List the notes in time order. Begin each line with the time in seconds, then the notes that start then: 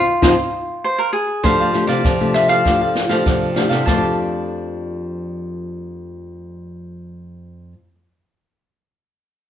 Already playing: F4
0.22 F3 C4 D#4 F4 C5 D#5 F5, kick, snare
0.84 C5
0.98 A#4
1.13 G#4
1.43 F3 A3 D4 G4 A4 C5 D5 F5, kick, snare
1.60 A4 D5 F5
1.73 A3 D4 G4, muted cavaquinho stroke, snare
1.87 C3 A4 D5 F5, snare
2.04 C3 F3, kick, snare
2.20 A3 D4 G4 A4 D5 F5
2.34 D4 A4 D5 E5 F5, snare
2.49 A4 D5 F5, snare
2.65 F3 A3 D4 G4 A4 D5 F5, kick, snare
2.81 A4 D5 F5
2.95 muted cavaquinho stroke, snare
3.09 F3 A3 D4 G4 A4 D5 F5, snare
3.26 C3 F3, kick, snare
3.41 A4 D5 F5
3.54 A3 D4 G4 A4 D5 F5, snare
3.69 C3 A4 D5 F5, snare
3.82 F3 D4 A4 A5
3.87 F2 A3 D5 F5, kick, snare, splash
3.92 D4
3.97 G4